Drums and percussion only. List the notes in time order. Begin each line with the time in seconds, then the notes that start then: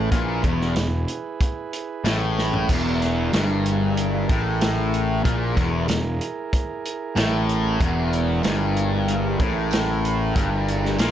0.12 kick, closed hi-hat
0.44 kick, closed hi-hat
0.61 snare
0.76 snare, closed hi-hat, tambourine
1.08 closed hi-hat
1.40 kick, closed hi-hat
1.73 closed hi-hat
2.05 snare, closed hi-hat, tambourine
2.38 snare
2.53 floor tom
2.69 kick, closed hi-hat, crash
3.02 snare, closed hi-hat
3.33 snare, closed hi-hat, tambourine
3.66 closed hi-hat
3.97 closed hi-hat
4.29 kick, closed hi-hat
4.61 snare, closed hi-hat, tambourine
4.94 closed hi-hat
5.25 kick, closed hi-hat
5.57 kick, snare, closed hi-hat
5.88 snare, closed hi-hat, tambourine
6.21 closed hi-hat
6.53 kick, closed hi-hat
6.85 closed hi-hat
7.16 snare, closed hi-hat, tambourine
7.49 closed hi-hat
7.81 kick, closed hi-hat
8.13 closed hi-hat
8.43 snare, closed hi-hat, tambourine
8.76 closed hi-hat
9.08 closed hi-hat
9.40 kick, closed hi-hat
9.71 snare, closed hi-hat, tambourine
10.05 closed hi-hat
10.36 kick, closed hi-hat
10.68 closed hi-hat
10.85 snare
10.98 snare, closed hi-hat, tambourine